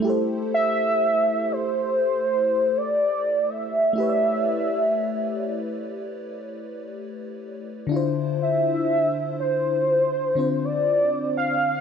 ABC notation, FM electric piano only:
X:1
M:4/4
L:1/8
Q:"Swing 16ths" 1/4=61
K:Am
V:1 name="FM electric piano"
[A,EGAc]8 | [A,EGB^cd]8 | [D,DEFc]4- [D,DEFc] [D,CDFc]3 |]